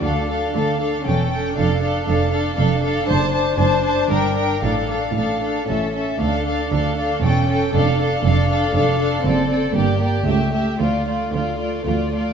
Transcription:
<<
  \new Staff \with { instrumentName = "Violin section" } { \time 3/4 \key d \minor \tempo 4 = 117 f''8 f''8 f''8 f''8 g''8 g''8 | f''8 f''8 f''8 f''8 f''8 f''8 | a''8 a''8 a''8 a''8 g''8 g''8 | f''8 f''8 f''8 f''8 e''8 e''8 |
f''8 f''8 f''8 f''8 g''8 g''8 | f''8 f''8 f''8 f''8 f''8 f''8 | d''8 d''8 d''8 d''8 e''8 e''8 | d''8 d''8 d''8 d''8 d''8 d''8 | }
  \new Staff \with { instrumentName = "Violin section" } { \time 3/4 \key d \minor a'8 a'8 a'8 a'8 a'8 a'8 | a'8 a'8 a'8 a'8 a'8 a'8 | c''8 c''8 c''8 c''8 bes'8 bes'8 | a'8 a'8 a'8 a'8 a'8 a'8 |
a'8 a'8 a'8 a'8 a'8 a'8 | a'8 a'8 a'8 a'8 a'8 a'8 | a'8 a'8 g'8 g'8 g'8 g'8 | f'8 f'8 f'8 f'8 f'8 f'8 | }
  \new Staff \with { instrumentName = "Viola section" } { \time 3/4 \key d \minor d'8 d'8 d'8 d'8 cis'8 cis'8 | d'8 d'8 d'8 d'8 d'8 d'8 | d'8 d'8 d'8 d'8 d'8 d'8 | d'8 d'8 d'8 d'8 cis'8 cis'8 |
d'8 d'8 d'8 d'8 cis'8 cis'8 | d'8 d'8 d'8 d'8 d'8 d'8 | c'8 c'8 bes8 bes8 a8 a8 | a8 a8 a8 a8 a8 a8 | }
  \new Staff \with { instrumentName = "Cello section" } { \clef bass \time 3/4 \key d \minor d,4 d,4 e,4 | f,4 f,4 f,4 | fis,4 fis,4 g,4 | a,4 a,4 a,4 |
d,4 d,4 e,4 | f,4 f,4 f,4 | fis,4 g,4 cis,4 | d,4 d,4 d,4 | }
  \new Staff \with { instrumentName = "Double bass section" } { \clef bass \time 3/4 \key d \minor d,4 d,4 e,,4 | f,,4 f,,4 f,,4 | fis,,4 fis,,4 g,,4 | a,,4 a,,4 a,,4 |
d,4 d,4 e,,4 | f,,4 f,,4 f,,4 | fis,,4 g,,4 cis,4 | d,4 d,4 d,4 | }
>>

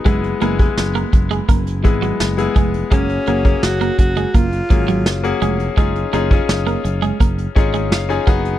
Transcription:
<<
  \new Staff \with { instrumentName = "Alto saxophone" } { \time 4/4 \key cis \mixolydian \tempo 4 = 84 r1 | cis'4 fis'8 fis'8 eis'4. r8 | r1 | }
  \new Staff \with { instrumentName = "Grand piano" } { \time 4/4 \key cis \mixolydian << { r1 | r1 | r2. eis''16 gis''8. | } \\ { <gis b e' gis'>8 <gis b e' gis'>16 <gis b e' gis'>4~ <gis b e' gis'>16 r8 <gis b e' gis'>8 r16 <gis b e' gis'>8 r16 | <ais cis' fis' gis'>8 <ais cis' fis' gis'>16 <ais cis' fis' gis'>4~ <ais cis' fis' gis'>16 r8 <fis ais cis' gis'>8 r16 <ais cis' fis' gis'>8 r16 | <cis' dis' eis' gis'>8 <cis' dis' eis' gis'>16 <cis' dis' eis' gis'>4~ <cis' dis' eis' gis'>16 r8 <cis' dis' eis' gis'>8 r16 <cis' dis' eis' gis'>16 <b dis' fis' gis'>8 | } >> }
  \new Staff \with { instrumentName = "Clean electric guitar" } { \clef bass \time 4/4 \key cis \mixolydian gis16 r16 ais16 r8 ais16 r16 gis16 ais16 r8 fis16 r8 gis16 r16 | gis16 r16 ais16 r8 ais16 r16 gis16 ais16 r8 fis16 r8 gis16 r16 | gis16 r16 ais16 r8 ais16 r16 gis16 ais16 r8 gis16 r8 ais16 r16 | }
  \new Staff \with { instrumentName = "Fretless electric bass" } { \clef bass \time 4/4 \key cis \mixolydian fis,,8 fis,,8 fis,,8 fis,,8 fis,,8 gis,,8 fis,,8 eis,,8 | fis,,8 fis,,8 fis,,8 fis,,8 fis,,8 gis,,8 fis,,8 eis,,8 | fis,,8 fis,,8 fis,,8 fis,,8 fis,,8 gis,,8 fis,,8 fis,,8 | }
  \new DrumStaff \with { instrumentName = "Drums" } \drummode { \time 4/4 <hh bd>16 hh16 hh16 <hh bd>16 sn16 hh16 <hh bd>16 hh16 <hh bd>16 hh16 <hh bd>16 hh16 sn16 hh16 <hh bd>16 hh16 | <hh bd>16 hh16 hh16 <hh bd>16 sn16 hh16 <hh bd>16 hh16 <hh bd>16 hh16 <hh bd>16 hh16 sn16 hh16 hh16 hh16 | <hh bd>16 hh16 hh16 <hh bd>16 sn16 hh16 hh16 hh16 <hh bd>16 hh16 <hh bd>16 hh16 sn16 hh16 <hh bd>16 hh16 | }
>>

